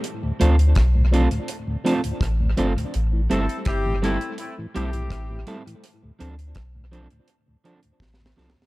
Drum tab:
HH |x-----x--x--x-----x--x--x-----x--x--x-----x--x--|x-----x--x--x-----x--x--x-----x--x--x-----x--x--|x-----x--x--x-----x--x--x-----x--x--------------|
SD |------------r-----------------------r-----------|------------r-----r-----------------r-----------|------------r-----------------------o-o-o-o-o-o-|
BD |------------o-----------------------o-----------|------------o-----------------------o-----------|------------o-----------------------o-----------|